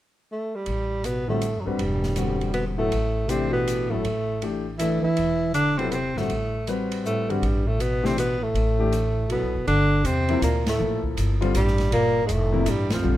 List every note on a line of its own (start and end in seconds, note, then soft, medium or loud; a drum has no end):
0.32 0.57 A3 medium
0.55 1.06 G3 medium
0.66 1.62 A1 medium
0.66 ride soft
1.02 1.26 B2 medium
1.02 1.29 B3 medium
1.02 hi-hat pedal soft
1.02 ride soft
1.27 1.58 A2 medium
1.27 1.40 D3 medium
1.27 1.40 G3 medium
1.27 1.62 A3 medium
1.27 1.41 C4 soft
1.27 1.41 F#4 medium
1.41 hi-hat pedal soft
1.41 ride soft
1.56 1.66 F#2 soft
1.56 1.68 F#3 soft
1.64 1.78 G#1 medium
1.64 2.52 G2 medium
1.64 1.78 G3 medium
1.64 2.53 G3 medium
1.64 1.78 C4 soft
1.64 1.78 F#4 medium
1.64 1.78 B4 medium
1.79 2.88 E1 medium
1.79 ride medium
2.03 snare soft
2.16 2.74 D3 soft
2.16 2.74 G3 soft
2.16 2.74 C4 soft
2.16 2.74 F#4 medium
2.16 hi-hat pedal soft
2.16 ride soft
2.41 ride soft
2.52 2.64 B2 medium
2.52 2.65 B3 medium
2.52 ride soft
2.75 3.28 A2 medium
2.75 2.90 F#3 medium
2.75 2.90 B3 medium
2.75 2.90 E4 soft
2.79 3.31 A3 medium
2.79 2.90 A4 medium
2.92 3.87 A1 medium
2.92 ride medium
3.27 3.50 C3 medium
3.27 3.86 E3 medium
3.27 3.86 A3 medium
3.27 3.52 C4 medium
3.27 3.87 D4 medium
3.27 3.87 G4 medium
3.27 hi-hat pedal soft
3.27 ride soft
3.50 3.91 B2 medium
3.50 3.92 B3 medium
3.67 hi-hat pedal medium
3.67 ride medium
3.90 4.04 G#1 medium
3.90 4.55 A2 medium
3.90 4.03 F#3 medium
3.90 4.55 A3 medium
3.90 4.03 B3 soft
3.90 4.03 E4 soft
3.90 4.03 A4 medium
4.05 5.00 A1 medium
4.05 ride soft
4.42 4.64 E3 soft
4.42 4.64 A3 soft
4.42 4.64 D4 soft
4.42 4.65 G4 medium
4.42 ride soft
4.77 5.00 E3 medium
4.77 5.02 E3 soft
4.77 5.02 A3 soft
4.77 5.02 D4 soft
4.77 5.02 E4 medium
4.77 5.02 A4 medium
4.77 hi-hat pedal soft
4.77 ride medium
5.01 5.50 E3 medium
5.01 5.51 E4 medium
5.01 muted upright bass stroke soft
5.17 6.13 E1 medium
5.17 ride medium
5.54 5.79 D3 medium
5.54 5.79 D4 medium
5.54 hi-hat pedal medium
5.54 ride soft
5.78 5.88 C3 medium
5.78 5.91 F#3 medium
5.78 5.91 B3 medium
5.78 5.88 C4 medium
5.78 5.91 E4 medium
5.78 5.91 A4 medium
5.78 ride soft
5.88 5.91 B2 medium
5.88 6.17 C3 medium
5.88 5.95 B3 medium
5.88 hi-hat pedal soft
5.88 ride soft
5.93 6.19 C4 medium
6.15 6.28 G1 medium
6.15 6.67 A2 medium
6.15 6.29 D3 soft
6.15 6.29 G3 soft
6.15 6.68 A3 medium
6.15 6.29 C4 soft
6.15 6.29 F#4 medium
6.15 snare soft
6.29 7.38 A1 medium
6.29 ride soft
6.67 7.24 G3 medium
6.67 7.25 C4 medium
6.67 7.25 F#4 soft
6.67 7.25 B4 medium
6.67 hi-hat pedal soft
6.67 ride soft
6.92 ride medium
7.05 7.30 A2 medium
7.05 7.31 A3 medium
7.05 hi-hat pedal medium
7.29 7.68 G2 medium
7.29 7.41 D3 medium
7.29 7.41 G3 soft
7.29 7.69 G3 medium
7.29 7.41 C4 medium
7.29 7.41 F#4 medium
7.29 ride soft
7.42 8.51 A1 medium
7.42 ride soft
7.66 7.80 A2 medium
7.66 7.82 A3 medium
7.79 8.05 B2 medium
7.79 8.08 B3 medium
7.79 hi-hat pedal soft
7.79 ride medium
8.03 8.15 C3 medium
8.03 8.16 E3 medium
8.03 8.16 A3 medium
8.03 8.18 C4 medium
8.03 8.16 D4 medium
8.03 8.16 G4 medium
8.03 snare soft
8.15 8.41 B2 medium
8.15 8.44 B3 medium
8.15 hi-hat pedal medium
8.15 ride medium
8.39 9.28 A2 medium
8.39 9.30 A3 medium
8.54 9.38 A1 medium
8.54 ride soft
8.79 8.91 E3 medium
8.79 8.91 A3 medium
8.79 8.91 D4 medium
8.79 8.92 G4 medium
8.92 hi-hat pedal soft
8.92 ride soft
9.28 9.64 B2 medium
9.28 9.52 F#3 soft
9.28 9.53 B3 soft
9.28 9.66 B3 medium
9.28 9.53 E4 soft
9.28 9.53 A4 soft
9.28 ride medium
9.42 9.54 B1 medium
9.54 9.66 F#1 medium
9.67 10.04 G1 medium
9.67 10.05 D3 medium
9.67 10.08 D4 medium
9.67 ride medium
10.04 10.41 E2 medium
10.04 10.41 C3 medium
10.04 10.42 C4 medium
10.04 hi-hat pedal medium
10.04 ride medium
10.28 10.41 C3 medium
10.28 10.41 F3 medium
10.28 10.41 A#3 medium
10.28 10.41 E4 medium
10.28 ride soft
10.41 10.78 D2 medium
10.41 10.64 A#2 medium
10.41 10.65 A#3 medium
10.41 hi-hat pedal medium
10.41 ride medium
10.66 11.01 A2 medium
10.66 11.03 A3 medium
10.66 snare medium
10.66 ride medium
10.79 11.16 A#1 medium
10.79 11.36 F3 medium
10.79 11.36 A#3 soft
10.79 11.36 E4 soft
10.79 11.36 A4 medium
11.04 kick medium
11.17 11.53 G1 medium
11.17 hi-hat pedal soft
11.17 ride medium
11.41 11.53 D3 medium
11.41 11.53 G3 medium
11.41 11.53 C4 medium
11.41 11.53 F4 medium
11.41 ride soft
11.53 11.91 A1 medium
11.53 11.88 G2 medium
11.53 11.90 G3 medium
11.53 hi-hat pedal medium
11.53 ride medium
11.68 snare soft
11.78 snare soft
11.78 ride soft
11.92 12.28 G1 medium
11.92 12.22 A#2 medium
11.92 12.23 A#3 loud
11.92 ride medium
12.24 12.30 G#2 medium
12.24 12.33 G#3 medium
12.28 12.65 F1 medium
12.28 12.69 A2 medium
12.28 12.70 A3 medium
12.28 hi-hat pedal soft
12.28 ride medium
12.52 12.65 C3 medium
12.52 12.65 F3 medium
12.52 12.65 A#3 medium
12.52 12.66 E4 medium
12.66 13.03 A1 medium
12.66 12.92 G2 medium
12.66 12.92 G3 medium
12.66 hi-hat pedal medium
12.66 ride medium
12.90 13.17 F2 medium
12.90 13.17 F3 medium
12.90 snare medium
12.90 ride medium
13.03 13.17 A#1 medium
13.03 13.17 D3 medium
13.03 13.17 G3 medium
13.03 13.17 C4 soft
13.03 13.17 F4 medium